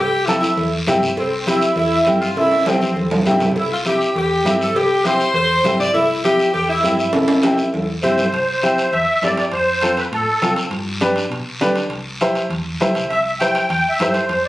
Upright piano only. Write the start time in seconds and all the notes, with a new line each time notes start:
0.28 C4 E4 A4
0.87 C4 E4 G4
1.47 C4 E4 G4
2.07 C4 E4 G4
2.66 C4 E4 G4
3.26 C4 E4 G4
3.86 C4 E4 G4
4.45 C4 E4 G4
5.05 C4 E4 G4
5.65 C4 E4 G4
6.24 C4 E4 G4
6.83 C4 E4 G4
7.43 C4 E4 G4
8.03 C4 E4 G4
8.63 C4 E4 G4
9.23 C4 E4 G4
9.82 C4 F4 A4
10.42 C4 F4 A4
11.01 D4 G4 B4
11.61 D4 G4 B4
12.21 E4 G4 C5
12.81 E4 G4 C5
13.41 E4 G4 C5
14.01 E4 G4 C5